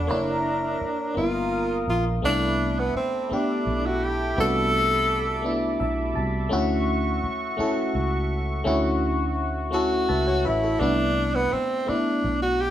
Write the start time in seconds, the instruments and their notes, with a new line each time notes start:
Already playing: tenor saxophone D4
0.07 fingered electric bass F#1, fm electric piano A#3 D4 E4 C#5, analog synth pad A#4 E5 A#5
0.81 muted fingered electric bass stroke
1.14 fingered electric bass G1, fm electric piano A#3 B3 D#4 F4, tenor saxophone F4, analog synth pad A#4 F5 D#6
1.88 fingered electric bass A#1, tenor saxophone F4
2.22 fingered electric bass C2, fm electric piano A3 B3 D4 E4, tenor saxophone D4, analog synth pad A4 E5 B5 D6
2.79 tenor saxophone B3
2.96 tenor saxophone C4, muted fingered electric bass stroke
3.29 fm electric piano A3 B3 D4 G4, tenor saxophone D4, muted fingered electric bass stroke
3.67 fingered electric bass B1
3.86 tenor saxophone F#4
4.03 tenor saxophone G4
4.36 fingered electric bass C2, fm electric piano A3 B3 D4 F#4, tenor saxophone A4
5.42 fm electric piano A3 B3 D4 E4
5.80 fingered electric bass B1, fm electric piano E5
6.15 fingered electric bass C2, fm electric piano A5
6.49 fingered electric bass D2, fm electric piano A3 C#4 E4 F#4, analog synth pad F#4 C#6
7.24 muted fingered electric bass stroke
7.57 fm electric piano A3 C#4 E4 A4, muted fingered electric bass stroke
7.95 fingered electric bass C#2
8.64 fingered electric bass D2, fm electric piano A3 C#4 E4 F#4, analog synth pad F#4
9.71 fm electric piano A3 C#4 E4 A4, tenor saxophone F#4
10.09 fingered electric bass C#2, fm electric piano B4 E5 A5
10.27 fm electric piano F#4 C#5
10.45 fingered electric bass A1, tenor saxophone E4, fm electric piano F#4 B4 E5
10.63 fm electric piano E4 A4
10.79 fingered electric bass C2, fm electric piano A3 B3 D4 E4, tenor saxophone D4
11.35 tenor saxophone B3
11.52 tenor saxophone C4, muted fingered electric bass stroke
11.86 fm electric piano A3 B3 D4 E4, tenor saxophone D4, muted fingered electric bass stroke
12.24 fingered electric bass B1
12.42 tenor saxophone F#4
12.61 tenor saxophone G4